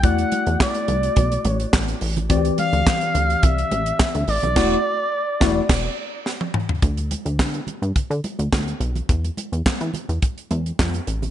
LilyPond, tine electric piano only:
\new Staff \with { instrumentName = "Tine electric piano" } { \time 4/4 \key e \phrygian \tempo 4 = 106 <a e' fis' d''>1 | <e c' fis' g' d''>1 | <a e' fis' d''>8 r4 <a e' fis' d''>8 r2 | r1 |
r1 | }